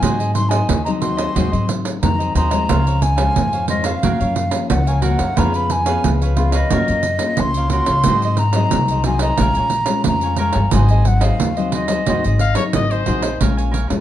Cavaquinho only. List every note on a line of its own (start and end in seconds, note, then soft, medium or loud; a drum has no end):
0.02 0.18 F#4 medium
0.02 0.18 G#4 medium
0.02 0.18 C5 medium
0.02 0.18 D#5 medium
0.19 0.34 G#4 soft
0.19 0.33 C5 soft
0.19 0.34 D#5 medium
0.34 muted cavaquinho stroke soft
0.51 0.84 G#4 medium
0.51 0.84 C5 medium
0.51 0.84 D#5 medium
0.86 1.00 G#4 soft
0.86 1.01 C5 soft
0.86 1.01 D#5 soft
1.01 1.17 F#4 soft
1.01 1.17 G#4 soft
1.01 1.17 C5 medium
1.01 1.16 D#5 medium
1.17 1.34 G#4 medium
1.17 1.34 C5 medium
1.17 1.34 D#5 medium
1.35 1.51 F#4 medium
1.35 1.51 G#4 medium
1.35 1.51 C5 medium
1.35 1.51 D#5 medium
1.52 1.66 G#4 soft
1.52 1.67 C5 soft
1.52 1.67 D#5 soft
2.19 2.35 G#4 soft
2.19 2.35 C5 soft
2.19 2.35 D#5 medium
2.35 2.51 F#4 medium
2.35 2.51 G#4 medium
2.35 2.51 C5 medium
2.35 2.49 D#5 medium
2.51 2.68 G#4 soft
2.51 2.68 C5 soft
2.51 2.67 D#5 soft
2.69 2.85 F4 medium
2.69 2.85 C5 medium
2.69 2.85 C#5 medium
2.69 2.85 F5 medium
2.86 3.01 C5 soft
2.86 3.02 C#5 medium
2.86 3.02 F5 medium
3.02 muted cavaquinho stroke soft
3.16 3.51 C5 medium
3.16 3.51 C#5 medium
3.16 3.50 F5 medium
3.53 3.68 C5 soft
3.53 3.68 C#5 soft
3.53 3.69 F5 soft
3.69 3.85 F4 soft
3.69 3.85 C5 medium
3.69 3.84 C#5 soft
3.69 3.84 F5 medium
3.85 4.02 C5 medium
3.85 4.02 C#5 medium
3.85 4.01 F5 medium
4.03 4.19 F#4 medium
4.03 4.19 A#4 medium
4.03 4.19 C#5 medium
4.03 4.19 F5 medium
4.20 4.34 A#4 soft
4.20 4.35 C#5 soft
4.20 4.35 F5 soft
4.35 muted cavaquinho stroke soft
4.87 5.01 A#4 soft
4.87 5.01 C#5 soft
4.87 5.02 F5 medium
5.01 5.18 F#4 medium
5.01 5.18 A#4 medium
5.01 5.17 C#5 medium
5.01 5.17 F5 medium
5.18 5.36 A#4 soft
5.18 5.35 C#5 soft
5.18 5.35 F5 soft
5.36 5.52 F4 medium
5.36 5.53 B4 medium
5.36 5.53 C#5 medium
5.36 5.52 F5 medium
5.53 5.69 B4 soft
5.53 5.70 C#5 soft
5.53 5.69 F5 medium
5.71 muted cavaquinho stroke soft
5.86 6.20 B4 medium
5.86 6.19 C#5 medium
5.86 6.19 F5 medium
6.21 6.36 B4 soft
6.21 6.36 C#5 soft
6.21 6.37 F5 medium
6.36 6.53 F4 soft
6.36 6.53 B4 soft
6.36 6.52 C#5 medium
6.36 6.51 F5 medium
6.52 6.70 B4 medium
6.52 6.70 C#5 medium
6.52 6.69 F5 medium
6.71 6.87 F#4 medium
6.71 6.87 A#4 medium
6.71 6.87 C#5 medium
6.71 6.87 F5 medium
6.89 7.04 A#4 soft
6.89 7.05 C#5 soft
6.89 7.04 F5 soft
7.05 muted cavaquinho stroke soft
7.57 7.72 A#4 soft
7.57 7.72 C#5 soft
7.57 7.72 F5 medium
7.72 7.88 F#4 medium
7.72 7.88 A#4 medium
7.72 7.88 C#5 medium
7.72 7.87 F5 medium
7.88 8.05 A#4 soft
7.88 8.05 C#5 soft
7.88 8.04 F5 medium
8.08 8.22 F#4 medium
8.08 8.22 G#4 medium
8.08 8.23 C5 medium
8.08 8.23 D#5 medium
8.25 8.40 G#4 soft
8.25 8.39 C5 soft
8.25 8.39 D#5 medium
8.41 muted cavaquinho stroke soft
8.56 8.89 G#4 medium
8.56 8.88 C5 medium
8.56 8.88 D#5 medium
8.91 9.05 G#4 soft
8.91 9.06 C5 soft
8.91 9.05 D#5 medium
9.06 9.21 F#4 medium
9.06 9.21 G#4 medium
9.06 9.22 C5 medium
9.06 9.21 D#5 medium
9.22 9.39 G#4 medium
9.22 9.38 C5 medium
9.22 9.38 D#5 medium
9.39 9.55 A#4 medium
9.39 9.55 C#5 medium
9.39 9.55 F5 medium
9.39 9.55 G#5 medium
9.57 9.71 C#5 soft
9.57 9.71 F5 soft
9.57 9.71 G#5 soft
9.72 muted cavaquinho stroke soft
10.23 10.38 C#5 soft
10.23 10.39 F5 medium
10.23 10.39 G#5 medium
10.38 10.54 A#4 medium
10.38 10.55 C#5 medium
10.38 10.54 F5 medium
10.38 10.53 G#5 medium
10.54 10.72 C#5 soft
10.54 10.71 F5 soft
10.54 10.71 G#5 medium
10.73 10.89 F#4 medium
10.73 10.89 G#4 medium
10.73 10.89 C5 medium
10.73 10.89 D#5 medium
10.90 11.05 G#4 soft
10.90 11.05 C5 soft
10.90 11.06 D#5 medium
11.06 muted cavaquinho stroke soft
11.21 11.55 G#4 medium
11.21 11.54 C5 medium
11.21 11.54 D#5 medium
11.57 11.71 G#4 soft
11.57 11.72 C5 soft
11.57 11.72 D#5 soft
11.72 11.88 F#4 soft
11.72 11.89 G#4 medium
11.72 11.89 C5 medium
11.72 11.88 D#5 medium
11.89 12.06 G#4 medium
11.89 12.06 C5 medium
11.89 12.05 D#5 medium
12.08 12.23 F#4 medium
12.08 12.23 G#4 medium
12.08 12.24 C5 medium
12.08 12.24 D#5 medium
12.25 12.38 G#4 soft
12.25 12.39 C5 soft
12.25 12.39 D#5 soft
12.39 muted cavaquinho stroke soft
12.91 13.06 G#4 soft
12.91 13.06 C5 soft
12.91 13.06 D#5 soft
13.06 13.22 F#4 medium
13.06 13.22 G#4 medium
13.06 13.22 C5 medium
13.06 13.21 D#5 medium
13.22 13.39 G#4 soft
13.22 13.39 C5 soft
13.22 13.39 D#5 soft
13.41 13.56 A#4 medium
13.41 13.57 C#5 medium
13.41 13.56 F5 medium
13.41 13.56 G#5 medium
13.57 13.71 C#5 soft
13.57 13.71 F5 soft
13.57 13.72 G#5 medium
13.71 13.87 A#4 medium
13.71 13.87 C#5 medium
13.71 13.88 F5 medium
13.71 13.88 G#5 medium
13.88 muted cavaquinho stroke soft